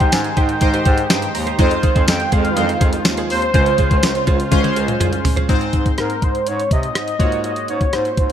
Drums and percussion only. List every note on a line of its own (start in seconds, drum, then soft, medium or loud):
0.00 kick medium
0.00 closed hi-hat soft
0.12 snare loud
0.12 closed hi-hat medium
0.12 tambourine medium
0.24 closed hi-hat soft
0.37 kick medium
0.37 closed hi-hat medium
0.49 closed hi-hat soft
0.61 kick medium
0.61 closed hi-hat medium
0.74 closed hi-hat medium
0.85 kick loud
0.85 closed hi-hat medium
0.98 closed hi-hat medium
1.10 snare loud
1.10 closed hi-hat loud
1.10 tambourine medium
1.22 closed hi-hat medium
1.35 open hi-hat medium
1.47 closed hi-hat soft
1.59 kick loud
1.59 closed hi-hat medium
1.71 closed hi-hat medium
1.83 kick medium
1.83 closed hi-hat medium
1.96 kick medium
1.96 closed hi-hat soft
2.08 snare loud
2.08 closed hi-hat medium
2.08 tambourine medium
2.20 closed hi-hat soft
2.32 kick medium
2.32 closed hi-hat medium
2.45 closed hi-hat soft
2.57 closed hi-hat medium
2.69 closed hi-hat medium
2.81 kick loud
2.81 closed hi-hat medium
2.93 closed hi-hat medium
3.05 snare loud
3.05 closed hi-hat medium
3.05 tambourine medium
3.17 closed hi-hat medium
3.30 open hi-hat medium
3.42 closed hi-hat soft
3.54 kick loud
3.54 closed hi-hat medium
3.66 closed hi-hat medium
3.78 kick medium
3.78 closed hi-hat medium
3.91 kick medium
3.91 closed hi-hat soft
4.03 snare loud
4.03 closed hi-hat medium
4.03 tambourine medium
4.15 closed hi-hat soft
4.27 kick medium
4.27 closed hi-hat medium
4.40 closed hi-hat medium
4.52 kick loud
4.52 closed hi-hat medium
4.52 high tom medium
4.64 closed hi-hat medium
4.64 high tom medium
4.76 closed hi-hat medium
4.88 closed hi-hat medium
4.88 mid tom medium
5.01 closed hi-hat medium
5.01 mid tom medium
5.13 closed hi-hat medium
5.25 floor tom loud
5.25 open hi-hat medium
5.37 closed hi-hat soft
5.37 floor tom medium
5.49 kick loud
5.49 closed hi-hat medium
5.61 closed hi-hat soft
5.73 kick medium
5.73 closed hi-hat medium
5.86 kick medium
5.86 closed hi-hat soft
5.98 cross-stick medium
5.98 closed hi-hat medium
6.10 closed hi-hat soft
6.22 kick medium
6.22 closed hi-hat medium
6.35 closed hi-hat soft
6.47 closed hi-hat medium
6.60 closed hi-hat soft
6.71 kick medium
6.71 closed hi-hat medium
6.83 closed hi-hat medium
6.95 cross-stick loud
6.95 closed hi-hat medium
7.08 closed hi-hat soft
7.20 kick loud
7.20 closed hi-hat medium
7.32 closed hi-hat soft
7.44 closed hi-hat medium
7.56 closed hi-hat soft
7.68 closed hi-hat medium
7.81 kick medium
7.81 closed hi-hat soft
7.93 cross-stick medium
7.93 closed hi-hat medium
8.05 closed hi-hat soft
8.17 kick medium
8.17 closed hi-hat medium